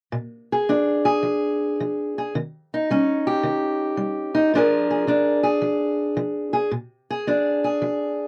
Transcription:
0.12 0.65 A#2 medium
0.52 1.04 G#4 medium
0.69 1.21 F3 medium
0.69 2.32 D4 soft
1.05 2.17 G#4 medium
1.23 1.75 F3 medium
1.80 2.31 F3 medium
2.18 2.34 G#4 medium
2.35 2.86 D#3 medium
2.74 4.33 D#4 medium
2.90 3.41 G3 medium
2.90 4.53 C#4 medium
3.27 4.55 G4 medium
3.43 3.95 D#3 medium
3.97 4.50 G3 medium
4.35 4.52 D#4 medium
4.54 5.05 A#2 medium
4.54 5.07 F3 medium
4.54 5.08 D4 medium
4.54 4.90 G#4 medium
4.54 5.43 A#4 medium
4.90 5.42 G#4 medium
5.07 5.60 F3 medium
5.07 6.71 D4 medium
5.43 6.52 G#4 medium
5.62 6.14 F3 medium
6.17 6.69 F3 medium
6.53 6.71 G#4 medium
6.71 7.24 A#2 medium
7.10 7.63 G#4 medium
7.27 7.79 F3 medium
7.27 8.28 D4 medium
7.64 8.28 G#4 medium
7.82 8.28 F3 medium

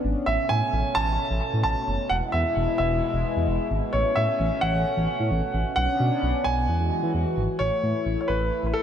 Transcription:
0.00 0.26 B3 medium
0.00 0.26 C#4 medium
0.00 0.26 D4 medium
0.05 0.15 G#1 loud
0.26 0.38 A1 loud
0.26 5.73 B2 medium
0.26 2.09 A3 medium
0.26 2.09 C#4 medium
0.26 0.51 E5 loud
0.49 0.61 A2 medium
0.49 0.97 G#5 loud
0.73 0.84 A1 loud
0.95 1.07 A1 loud
0.95 1.60 A5 loud
1.08 1.18 A1 loud
1.31 1.41 A1 loud
1.53 1.64 A2 loud
1.63 1.75 A1 loud
1.63 2.07 A5 loud
1.88 1.98 F#1 medium
2.09 2.21 E1 loud
2.09 3.92 G#3 medium
2.09 3.92 E4 medium
2.09 2.15 F#5 loud
2.32 2.44 E2 loud
2.32 2.75 E5 medium
2.57 2.67 E1 loud
2.78 2.90 E1 loud
2.78 3.66 E5 medium
2.91 3.01 E1 loud
3.14 3.24 E1 loud
3.37 3.47 E2 loud
3.48 3.59 E1 loud
3.71 3.82 G#1 loud
3.93 4.04 A1 loud
3.93 5.75 A3 medium
3.93 5.75 C#4 medium
3.93 4.17 C#5 medium
4.16 4.27 A2 loud
4.16 4.63 E5 medium
4.40 4.50 A1 loud
4.61 4.73 A1 loud
4.61 5.72 F#5 loud
4.74 4.85 A1 loud
4.97 5.08 A1 loud
5.20 5.30 A2 loud
5.31 5.42 A1 loud
5.54 5.65 A1 loud
5.76 5.88 B1 loud
5.76 6.68 B3 medium
5.76 6.68 C#4 medium
5.76 6.68 D4 medium
5.76 6.47 F#5 loud
6.00 6.11 B2 loud
6.23 6.33 B1 loud
6.44 6.56 B1 loud
6.44 7.10 G#5 loud
6.57 6.68 B1 loud
6.69 6.79 E2 loud
6.69 7.59 E3 medium
6.69 7.59 G#3 medium
6.69 7.59 F#4 medium
6.80 6.91 E2 loud
7.03 7.14 E3 loud
7.15 7.25 E2 loud
7.37 7.48 G#1 loud
7.59 7.71 A1 loud
7.59 8.83 E3 medium
7.59 8.83 A3 medium
7.59 8.83 E4 medium
7.59 8.17 C#5 loud
7.83 7.94 A2 medium
8.06 8.17 A1 loud
8.21 8.28 C#5 medium
8.28 8.40 A1 loud
8.28 8.65 B4 medium
8.40 8.51 A1 medium
8.63 8.74 A1 medium
8.63 8.74 B4 medium
8.74 8.83 A4 loud

